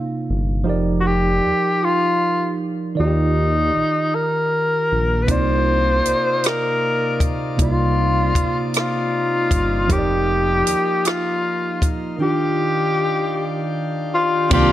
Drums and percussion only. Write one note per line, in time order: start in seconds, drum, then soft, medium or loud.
5.28 kick medium
5.28 closed hi-hat medium
6.05 closed hi-hat medium
6.44 cross-stick loud
6.44 closed hi-hat medium
7.20 kick medium
7.20 closed hi-hat medium
7.59 kick medium
7.59 closed hi-hat medium
8.35 kick medium
8.35 closed hi-hat medium
8.74 cross-stick loud
8.74 closed hi-hat medium
9.51 kick medium
9.51 closed hi-hat medium
9.90 kick medium
9.90 closed hi-hat medium
10.67 closed hi-hat medium
11.05 cross-stick loud
11.05 closed hi-hat medium
11.82 kick medium
11.82 closed hi-hat medium
14.51 kick loud
14.51 crash medium